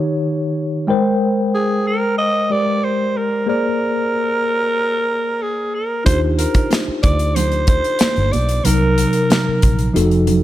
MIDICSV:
0, 0, Header, 1, 6, 480
1, 0, Start_track
1, 0, Tempo, 647249
1, 663, Time_signature, 4, 2, 24, 8
1, 7739, End_track
2, 0, Start_track
2, 0, Title_t, "Alto saxophone"
2, 0, Program_c, 0, 65
2, 1147, Note_on_c, 0, 68, 87
2, 1389, Note_on_c, 0, 70, 93
2, 1400, Note_off_c, 0, 68, 0
2, 1614, Note_off_c, 0, 70, 0
2, 1618, Note_on_c, 0, 75, 100
2, 1866, Note_on_c, 0, 74, 98
2, 1877, Note_off_c, 0, 75, 0
2, 2109, Note_on_c, 0, 72, 81
2, 2120, Note_off_c, 0, 74, 0
2, 2349, Note_on_c, 0, 70, 77
2, 2360, Note_off_c, 0, 72, 0
2, 2584, Note_off_c, 0, 70, 0
2, 2590, Note_on_c, 0, 70, 108
2, 4024, Note_on_c, 0, 68, 76
2, 4035, Note_off_c, 0, 70, 0
2, 4262, Note_on_c, 0, 70, 74
2, 4273, Note_off_c, 0, 68, 0
2, 4489, Note_off_c, 0, 70, 0
2, 4494, Note_on_c, 0, 72, 94
2, 4603, Note_off_c, 0, 72, 0
2, 4734, Note_on_c, 0, 70, 74
2, 4996, Note_off_c, 0, 70, 0
2, 5213, Note_on_c, 0, 74, 88
2, 5456, Note_on_c, 0, 72, 90
2, 5467, Note_off_c, 0, 74, 0
2, 5698, Note_off_c, 0, 72, 0
2, 5701, Note_on_c, 0, 72, 90
2, 6173, Note_on_c, 0, 74, 85
2, 6184, Note_off_c, 0, 72, 0
2, 6415, Note_on_c, 0, 70, 92
2, 6426, Note_off_c, 0, 74, 0
2, 7380, Note_off_c, 0, 70, 0
2, 7739, End_track
3, 0, Start_track
3, 0, Title_t, "Tine electric piano"
3, 0, Program_c, 1, 4
3, 0, Control_c, 1, 64, 127
3, 0, Note_on_c, 1, 51, 71
3, 0, Note_on_c, 1, 63, 65
3, 0, Note_on_c, 1, 67, 73
3, 0, Note_on_c, 1, 73, 75
3, 636, Note_off_c, 1, 51, 0
3, 640, Note_off_c, 1, 63, 0
3, 645, Note_off_c, 1, 67, 0
3, 647, Note_off_c, 1, 73, 0
3, 648, Note_on_c, 1, 56, 81
3, 655, Note_on_c, 1, 79, 76
3, 662, Note_on_c, 1, 70, 81
3, 670, Note_on_c, 1, 72, 99
3, 673, Control_c, 1, 64, 0
3, 807, Control_c, 1, 64, 127
3, 1829, Note_off_c, 1, 56, 0
3, 1832, Note_off_c, 1, 79, 0
3, 1836, Note_off_c, 1, 70, 0
3, 1840, Note_off_c, 1, 72, 0
3, 1855, Note_on_c, 1, 56, 53
3, 1859, Note_on_c, 1, 67, 40
3, 1863, Note_on_c, 1, 74, 53
3, 1864, Note_on_c, 1, 70, 44
3, 2568, Note_on_c, 1, 58, 69
3, 2574, Note_on_c, 1, 68, 66
3, 2576, Note_off_c, 1, 56, 0
3, 2578, Note_off_c, 1, 67, 0
3, 2578, Note_off_c, 1, 74, 0
3, 2581, Note_off_c, 1, 70, 0
3, 2582, Note_on_c, 1, 72, 58
3, 2587, Note_on_c, 1, 74, 73
3, 2590, Control_c, 1, 64, 0
3, 2723, Control_c, 1, 64, 127
3, 4464, Note_off_c, 1, 58, 0
3, 4467, Note_off_c, 1, 68, 0
3, 4471, Note_off_c, 1, 72, 0
3, 4473, Note_off_c, 1, 74, 0
3, 4484, Note_on_c, 1, 63, 68
3, 4490, Note_on_c, 1, 62, 63
3, 4496, Note_on_c, 1, 65, 64
3, 4502, Note_on_c, 1, 67, 60
3, 4509, Control_c, 1, 64, 0
3, 4509, Note_on_c, 1, 72, 79
3, 4633, Control_c, 1, 64, 127
3, 6384, Note_off_c, 1, 63, 0
3, 6387, Note_off_c, 1, 62, 0
3, 6390, Note_off_c, 1, 65, 0
3, 6393, Note_off_c, 1, 67, 0
3, 6397, Note_off_c, 1, 72, 0
3, 6407, Note_on_c, 1, 48, 71
3, 6413, Note_on_c, 1, 54, 64
3, 6420, Note_on_c, 1, 63, 64
3, 6428, Note_on_c, 1, 70, 76
3, 6429, Control_c, 1, 64, 0
3, 6573, Control_c, 1, 64, 127
3, 7356, Note_off_c, 1, 48, 0
3, 7360, Note_off_c, 1, 54, 0
3, 7363, Note_off_c, 1, 63, 0
3, 7367, Note_off_c, 1, 70, 0
3, 7367, Note_on_c, 1, 53, 70
3, 7372, Note_on_c, 1, 63, 71
3, 7381, Note_on_c, 1, 66, 69
3, 7386, Note_on_c, 1, 69, 80
3, 7393, Control_c, 1, 64, 0
3, 7523, Control_c, 1, 64, 127
3, 7739, Note_off_c, 1, 53, 0
3, 7739, Note_off_c, 1, 63, 0
3, 7739, Note_off_c, 1, 66, 0
3, 7739, Note_off_c, 1, 69, 0
3, 7739, End_track
4, 0, Start_track
4, 0, Title_t, "Fingered electric bass"
4, 0, Program_c, 2, 33
4, 4501, Note_on_c, 2, 39, 93
4, 4781, Note_off_c, 2, 39, 0
4, 5222, Note_on_c, 2, 38, 84
4, 5792, Note_off_c, 2, 38, 0
4, 6064, Note_on_c, 2, 31, 97
4, 6156, Note_off_c, 2, 31, 0
4, 6187, Note_on_c, 2, 35, 72
4, 6372, Note_off_c, 2, 35, 0
4, 6424, Note_on_c, 2, 36, 98
4, 6704, Note_off_c, 2, 36, 0
4, 7145, Note_on_c, 2, 34, 76
4, 7332, Note_off_c, 2, 34, 0
4, 7389, Note_on_c, 2, 29, 93
4, 7739, Note_off_c, 2, 29, 0
4, 7739, End_track
5, 0, Start_track
5, 0, Title_t, "Muted fingered electric bass strokes"
5, 5104, Note_on_c, 9, 29, 42
5, 5178, Note_off_c, 9, 29, 0
5, 7033, Note_on_c, 9, 29, 38
5, 7107, Note_off_c, 9, 29, 0
5, 7739, End_track
6, 0, Start_track
6, 0, Title_t, "Drums"
6, 4495, Note_on_c, 9, 62, 51
6, 4497, Note_on_c, 9, 36, 107
6, 4497, Note_on_c, 9, 42, 94
6, 4569, Note_off_c, 9, 62, 0
6, 4571, Note_off_c, 9, 36, 0
6, 4571, Note_off_c, 9, 42, 0
6, 4736, Note_on_c, 9, 42, 85
6, 4810, Note_off_c, 9, 42, 0
6, 4853, Note_on_c, 9, 42, 52
6, 4856, Note_on_c, 9, 36, 82
6, 4927, Note_off_c, 9, 42, 0
6, 4930, Note_off_c, 9, 36, 0
6, 4973, Note_on_c, 9, 63, 58
6, 4978, Note_on_c, 9, 42, 74
6, 4989, Note_on_c, 9, 38, 94
6, 5047, Note_off_c, 9, 63, 0
6, 5052, Note_off_c, 9, 42, 0
6, 5063, Note_off_c, 9, 38, 0
6, 5213, Note_on_c, 9, 42, 70
6, 5219, Note_on_c, 9, 36, 84
6, 5288, Note_off_c, 9, 42, 0
6, 5293, Note_off_c, 9, 36, 0
6, 5334, Note_on_c, 9, 42, 45
6, 5408, Note_off_c, 9, 42, 0
6, 5459, Note_on_c, 9, 42, 93
6, 5459, Note_on_c, 9, 62, 54
6, 5459, Note_on_c, 9, 64, 75
6, 5533, Note_off_c, 9, 42, 0
6, 5533, Note_off_c, 9, 62, 0
6, 5533, Note_off_c, 9, 64, 0
6, 5574, Note_on_c, 9, 42, 38
6, 5648, Note_off_c, 9, 42, 0
6, 5688, Note_on_c, 9, 42, 67
6, 5694, Note_on_c, 9, 36, 88
6, 5694, Note_on_c, 9, 62, 35
6, 5762, Note_off_c, 9, 42, 0
6, 5768, Note_off_c, 9, 36, 0
6, 5768, Note_off_c, 9, 62, 0
6, 5817, Note_on_c, 9, 42, 46
6, 5891, Note_off_c, 9, 42, 0
6, 5924, Note_on_c, 9, 42, 95
6, 5939, Note_on_c, 9, 38, 103
6, 5942, Note_on_c, 9, 63, 70
6, 5998, Note_off_c, 9, 42, 0
6, 6013, Note_off_c, 9, 38, 0
6, 6017, Note_off_c, 9, 63, 0
6, 6053, Note_on_c, 9, 42, 30
6, 6127, Note_off_c, 9, 42, 0
6, 6178, Note_on_c, 9, 42, 57
6, 6183, Note_on_c, 9, 63, 61
6, 6252, Note_off_c, 9, 42, 0
6, 6257, Note_off_c, 9, 63, 0
6, 6294, Note_on_c, 9, 42, 54
6, 6368, Note_off_c, 9, 42, 0
6, 6413, Note_on_c, 9, 42, 100
6, 6418, Note_on_c, 9, 62, 54
6, 6487, Note_off_c, 9, 42, 0
6, 6492, Note_off_c, 9, 62, 0
6, 6658, Note_on_c, 9, 42, 90
6, 6732, Note_off_c, 9, 42, 0
6, 6770, Note_on_c, 9, 42, 53
6, 6844, Note_off_c, 9, 42, 0
6, 6899, Note_on_c, 9, 42, 69
6, 6899, Note_on_c, 9, 63, 58
6, 6910, Note_on_c, 9, 38, 100
6, 6973, Note_off_c, 9, 42, 0
6, 6974, Note_off_c, 9, 63, 0
6, 6984, Note_off_c, 9, 38, 0
6, 7137, Note_on_c, 9, 42, 66
6, 7143, Note_on_c, 9, 36, 81
6, 7211, Note_off_c, 9, 42, 0
6, 7217, Note_off_c, 9, 36, 0
6, 7258, Note_on_c, 9, 42, 45
6, 7332, Note_off_c, 9, 42, 0
6, 7387, Note_on_c, 9, 42, 79
6, 7387, Note_on_c, 9, 62, 64
6, 7461, Note_off_c, 9, 42, 0
6, 7461, Note_off_c, 9, 62, 0
6, 7500, Note_on_c, 9, 42, 34
6, 7574, Note_off_c, 9, 42, 0
6, 7617, Note_on_c, 9, 42, 63
6, 7619, Note_on_c, 9, 64, 71
6, 7691, Note_off_c, 9, 42, 0
6, 7693, Note_off_c, 9, 64, 0
6, 7739, End_track
0, 0, End_of_file